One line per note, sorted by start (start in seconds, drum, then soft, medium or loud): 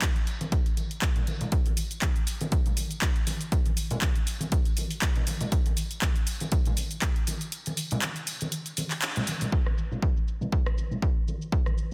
0.02 kick loud
0.02 clap loud
0.02 closed hi-hat medium
0.02 tambourine soft
0.02 high conga medium
0.16 closed hi-hat soft
0.16 tambourine soft
0.27 closed hi-hat medium
0.27 tambourine medium
0.41 closed hi-hat soft
0.41 tambourine soft
0.41 high conga medium
0.52 kick loud
0.52 closed hi-hat medium
0.52 tambourine soft
0.66 closed hi-hat soft
0.66 tambourine soft
0.77 closed hi-hat medium
0.77 tambourine medium
0.77 high conga medium
0.91 closed hi-hat soft
0.91 tambourine soft
1.02 kick loud
1.02 clap loud
1.02 closed hi-hat medium
1.02 tambourine medium
1.16 closed hi-hat soft
1.16 low conga medium
1.27 closed hi-hat medium
1.27 tambourine medium
1.27 high conga medium
1.41 closed hi-hat soft
1.41 tambourine soft
1.41 low conga medium
1.52 kick loud
1.52 closed hi-hat medium
1.52 shaker soft
1.66 closed hi-hat soft
1.66 high conga medium
1.66 shaker soft
1.77 open hi-hat loud
1.77 tambourine medium
1.77 shaker medium
1.91 closed hi-hat soft
1.91 tambourine soft
1.91 shaker soft
2.02 kick loud
2.02 clap loud
2.02 closed hi-hat medium
2.02 tambourine soft
2.02 high conga medium
2.02 shaker soft
2.16 closed hi-hat soft
2.16 shaker soft
2.27 open hi-hat medium
2.27 tambourine medium
2.27 shaker medium
2.41 closed hi-hat soft
2.41 tambourine soft
2.41 high conga medium
2.41 shaker soft
2.52 kick loud
2.52 closed hi-hat medium
2.52 tambourine soft
2.52 shaker soft
2.66 closed hi-hat soft
2.66 tambourine soft
2.66 low conga medium
2.66 shaker soft
2.77 open hi-hat loud
2.77 tambourine medium
2.77 high conga medium
2.77 shaker medium
2.91 closed hi-hat soft
2.91 tambourine soft
2.91 shaker soft
3.02 kick loud
3.02 clap loud
3.02 closed hi-hat medium
3.02 tambourine soft
3.02 shaker soft
3.16 closed hi-hat soft
3.27 open hi-hat loud
3.27 tambourine medium
3.27 high conga medium
3.27 shaker medium
3.41 closed hi-hat soft
3.41 tambourine soft
3.41 shaker soft
3.52 kick loud
3.52 closed hi-hat medium
3.52 tambourine soft
3.52 shaker soft
3.66 closed hi-hat soft
3.66 high conga medium
3.66 shaker soft
3.77 open hi-hat loud
3.77 tambourine medium
3.77 shaker medium
3.91 closed hi-hat soft
3.91 tambourine soft
3.91 low conga medium
3.91 shaker soft
4.01 kick loud
4.01 clap loud
4.01 closed hi-hat medium
4.01 tambourine soft
4.01 high conga medium
4.01 shaker soft
4.16 closed hi-hat soft
4.16 shaker soft
4.27 open hi-hat medium
4.27 tambourine medium
4.27 shaker medium
4.40 closed hi-hat soft
4.40 tambourine soft
4.40 high conga medium
4.40 shaker soft
4.52 kick loud
4.52 closed hi-hat medium
4.52 tambourine soft
4.52 shaker soft
4.65 closed hi-hat soft
4.65 tambourine soft
4.65 shaker soft
4.77 open hi-hat loud
4.77 tambourine medium
4.77 high conga medium
4.77 shaker medium
4.91 open hi-hat medium
4.91 tambourine soft
4.91 shaker soft
5.02 kick medium
5.02 clap loud
5.02 closed hi-hat medium
5.02 shaker soft
5.16 closed hi-hat soft
5.16 low conga medium
5.27 open hi-hat loud
5.27 tambourine medium
5.27 high conga medium
5.27 shaker medium
5.41 closed hi-hat soft
5.41 tambourine soft
5.41 low conga medium
5.41 shaker soft
5.52 kick loud
5.52 closed hi-hat medium
5.52 tambourine medium
5.52 shaker soft
5.66 closed hi-hat soft
5.66 high conga medium
5.66 shaker soft
5.77 open hi-hat medium
5.77 tambourine medium
5.77 shaker medium
5.91 closed hi-hat soft
5.91 tambourine soft
5.91 shaker soft
6.02 kick loud
6.02 clap loud
6.02 closed hi-hat medium
6.02 tambourine medium
6.02 high conga medium
6.02 shaker soft
6.16 closed hi-hat soft
6.16 shaker soft
6.27 open hi-hat medium
6.27 tambourine medium
6.27 shaker medium
6.40 closed hi-hat soft
6.40 tambourine soft
6.40 high conga medium
6.40 shaker soft
6.52 kick loud
6.52 closed hi-hat medium
6.52 tambourine soft
6.52 shaker soft
6.66 closed hi-hat soft
6.66 tambourine soft
6.66 low conga medium
6.66 shaker soft
6.77 open hi-hat medium
6.77 tambourine medium
6.77 high conga medium
6.77 shaker medium
6.91 closed hi-hat soft
6.91 tambourine soft
6.91 shaker soft
7.02 kick loud
7.02 clap loud
7.02 closed hi-hat medium
7.02 tambourine soft
7.02 shaker soft
7.16 closed hi-hat soft
7.27 open hi-hat loud
7.27 tambourine medium
7.27 high conga medium
7.27 shaker medium
7.41 closed hi-hat soft
7.41 tambourine soft
7.41 shaker soft
7.52 closed hi-hat loud
7.52 tambourine medium
7.52 shaker soft
7.66 closed hi-hat soft
7.66 tambourine soft
7.66 high conga medium
7.66 shaker soft
7.77 open hi-hat loud
7.77 tambourine medium
7.77 shaker medium
7.91 closed hi-hat soft
7.91 tambourine soft
7.91 low conga medium
7.91 shaker soft
8.02 clap loud
8.02 closed hi-hat medium
8.02 tambourine medium
8.02 high conga medium
8.02 shaker soft
8.16 closed hi-hat soft
8.16 tambourine soft
8.16 shaker soft
8.27 open hi-hat loud
8.27 tambourine loud
8.27 shaker medium
8.41 closed hi-hat soft
8.41 tambourine soft
8.41 high conga medium
8.41 shaker soft
8.52 closed hi-hat medium
8.52 tambourine soft
8.52 shaker soft
8.66 closed hi-hat soft
8.66 tambourine soft
8.66 shaker soft
8.77 open hi-hat loud
8.77 tambourine medium
8.77 high conga medium
8.77 shaker medium
8.91 clap soft
8.91 open hi-hat medium
8.91 tambourine soft
8.91 shaker soft
9.02 clap loud
9.02 closed hi-hat medium
9.02 tambourine medium
9.02 shaker soft
9.16 closed hi-hat soft
9.16 tambourine soft
9.16 low conga medium
9.16 shaker soft
9.27 open hi-hat loud
9.27 tambourine medium
9.27 high conga medium
9.27 shaker medium
9.41 closed hi-hat soft
9.41 tambourine soft
9.41 low conga medium
9.41 shaker soft
9.52 kick loud
9.52 shaker soft
9.66 cross-stick medium
9.66 high conga medium
9.66 shaker soft
9.77 tambourine medium
9.77 shaker medium
9.91 tambourine soft
9.91 low conga medium
9.91 shaker soft
10.02 kick medium
10.02 tambourine soft
10.02 high conga medium
10.02 shaker soft
10.17 shaker soft
10.27 tambourine medium
10.27 shaker medium
10.41 tambourine soft
10.41 high conga medium
10.41 low conga medium
10.41 shaker soft
10.52 kick loud
10.52 tambourine soft
10.52 shaker soft
10.66 cross-stick medium
10.66 shaker soft
10.78 tambourine medium
10.78 high conga medium
10.78 shaker medium
10.91 tambourine medium
10.91 low conga medium
10.91 shaker soft
11.02 kick medium
11.02 shaker soft
11.27 tambourine medium
11.27 high conga medium
11.27 shaker medium
11.41 tambourine soft
11.41 shaker soft
11.52 kick loud
11.52 shaker soft
11.66 cross-stick medium
11.66 high conga medium
11.66 shaker soft
11.78 tambourine medium
11.78 shaker medium